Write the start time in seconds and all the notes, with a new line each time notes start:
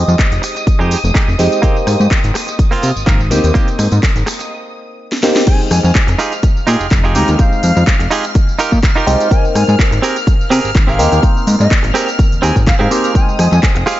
Already playing: G#3 C4 D#4 G4 D#6
0.08 F2, tambourine
0.19 kick, clap, closed hi-hat, tambourine
0.31 F1, muted clean electric guitar stroke, closed hi-hat, tambourine
0.42 muted clean electric guitar stroke, open hi-hat, tambourine
0.55 muted clean electric guitar stroke, closed hi-hat, tambourine
0.67 kick, closed hi-hat, tambourine
0.79 F2 G#3 D#4 G4, tambourine
0.91 open hi-hat, tambourine
1.04 F1, tambourine
1.14 G#3 D#4 G4, kick, clap, closed hi-hat, tambourine
1.28 F1, tambourine
1.38 F2 G#3 C4 D#4 G4, muted clean electric guitar stroke, open hi-hat, tambourine
1.52 closed hi-hat, tambourine
1.62 A#3 C4 G4, kick, closed hi-hat, tambourine
1.77 tambourine
1.86 G#2, muted clean electric guitar stroke, cross-stick, open hi-hat, tambourine
2.00 G#2, tambourine
2.11 kick, clap, closed hi-hat, tambourine
2.23 G#1, muted clean electric guitar stroke, closed hi-hat, tambourine
2.34 muted clean electric guitar stroke, cross-stick, open hi-hat, tambourine
2.47 muted clean electric guitar stroke, closed hi-hat, tambourine
2.59 kick, closed hi-hat, tambourine
2.71 A#3 C4 F4, open hi-hat, tambourine
2.82 C3, open hi-hat, tambourine
2.96 G#1, tambourine
3.06 G#1 A#3 C4 A#4, kick, clap, closed hi-hat, tambourine
3.20 tambourine
3.30 D#2 A#3 C4 D#4 G4, muted clean electric guitar stroke, open hi-hat, tambourine
3.44 D#2, closed hi-hat, tambourine
3.54 A#3 C4 D#4 G4 G5, kick, closed hi-hat, tambourine
3.67 closed hi-hat, tambourine
3.78 G#2, muted clean electric guitar stroke, cross-stick, open hi-hat, tambourine
3.92 G#2, closed hi-hat, tambourine
4.03 kick, clap, closed hi-hat, tambourine
4.15 G#1, muted clean electric guitar stroke, closed hi-hat, tambourine
4.26 muted clean electric guitar stroke, cross-stick, open hi-hat, tambourine
4.39 muted clean electric guitar stroke, closed hi-hat, tambourine
5.12 snare
5.23 A#3 C4 D#4 G4, snare
5.36 snare
5.46 G#3 C4 D#4 G5 G#5 F6, kick, closed hi-hat, crash, tambourine
5.61 tambourine
5.71 F2 G#5, cross-stick, open hi-hat, tambourine
5.83 F2 G#5, muted clean electric guitar stroke, tambourine
5.95 muted clean electric guitar stroke, kick, clap, closed hi-hat, tambourine
6.07 F1, muted clean electric guitar stroke, closed hi-hat, tambourine
6.19 D#4 F4 G4 G#4, cross-stick, open hi-hat, tambourine
6.32 closed hi-hat, tambourine
6.43 muted clean electric guitar stroke, kick, closed hi-hat, tambourine
6.57 tambourine
6.67 A#2 D#4 F4 G4 G#4, open hi-hat, tambourine
6.80 F1, tambourine
6.91 F1, kick, clap, closed hi-hat, tambourine
7.04 D#4 F4 G4 G#4, tambourine
7.15 D#2 G#3 C4 D#4 G4 A#5, open hi-hat, tambourine
7.28 D#2, closed hi-hat, tambourine
7.38 G#3 C4 D#4 F5 G5, kick, closed hi-hat, tambourine
7.53 tambourine
7.63 F2, open hi-hat, tambourine
7.75 F2, muted clean electric guitar stroke, tambourine
7.86 muted clean electric guitar stroke, kick, clap, closed hi-hat, tambourine
7.99 F1, muted clean electric guitar stroke, closed hi-hat, tambourine
8.11 D#4 F4 G4 G#4, open hi-hat, tambourine
8.24 closed hi-hat, tambourine
8.34 muted clean electric guitar stroke, kick, closed hi-hat, tambourine
8.49 tambourine
8.59 D#4 F4 G4 A#4, open hi-hat, tambourine
8.72 A#2, kick, tambourine
8.83 kick, clap, closed hi-hat, tambourine
8.96 D#4 F4 G4 A#4, tambourine
9.07 C2 G#3 C4 D#4 G4, open hi-hat, tambourine
9.20 closed hi-hat, tambourine
9.31 D#4 G5 G#5, kick, closed hi-hat, tambourine
9.45 tambourine
9.55 G#2 G#5, cross-stick, open hi-hat, tambourine
9.67 G#2 G#5, muted clean electric guitar stroke, tambourine
9.78 muted clean electric guitar stroke, kick, clap, closed hi-hat, tambourine
9.91 G#1, muted clean electric guitar stroke, closed hi-hat, tambourine
10.02 C4 G4 G#4 A#4, open hi-hat, tambourine
10.16 closed hi-hat, tambourine
10.26 muted clean electric guitar stroke, kick, closed hi-hat, tambourine
10.41 tambourine
10.50 C3 C4 G4 G#4 A#4, open hi-hat, tambourine
10.64 G#1, tambourine
10.75 G#1, kick, clap, closed hi-hat, tambourine
10.87 C4 G4 G#4 A#4 F5, tambourine
10.99 D#2 A#3 C4 D#4 G4, open hi-hat, tambourine
11.12 D#2, closed hi-hat, tambourine
11.22 A#3 C4 D#4 G5, kick, closed hi-hat, tambourine
11.37 tambourine
11.47 G#2, open hi-hat, tambourine
11.59 G#2 D#5, muted clean electric guitar stroke, tambourine
11.70 muted clean electric guitar stroke, kick, clap, closed hi-hat, tambourine
11.83 G#1, muted clean electric guitar stroke, closed hi-hat, tambourine
11.94 C4 G4 G#4 A#4, cross-stick, open hi-hat, tambourine
12.08 closed hi-hat, tambourine
12.18 muted clean electric guitar stroke, kick, closed hi-hat, tambourine
12.32 D#2, closed hi-hat, tambourine
12.42 D#2 C4 G4 G#4 A#4 G#5, open hi-hat, tambourine
12.56 G#1, kick, closed hi-hat, tambourine
12.67 F5, kick, clap, closed hi-hat, tambourine
12.79 G#2 C4 G4 G#4 A#4 F5, tambourine
12.91 A#3 C4 D#4 G4, open hi-hat, tambourine
13.04 closed hi-hat, tambourine
13.14 G#3 C4 D#4 G5 G#5 D#6, kick, closed hi-hat, tambourine
13.29 tambourine
13.39 F2 G#5, cross-stick, open hi-hat, tambourine
13.51 F2 G#5, muted clean electric guitar stroke, tambourine
13.62 muted clean electric guitar stroke, kick, clap, closed hi-hat, tambourine
13.75 F1, muted clean electric guitar stroke, closed hi-hat, tambourine
13.86 F4 G4 G#4 F5, cross-stick, open hi-hat, tambourine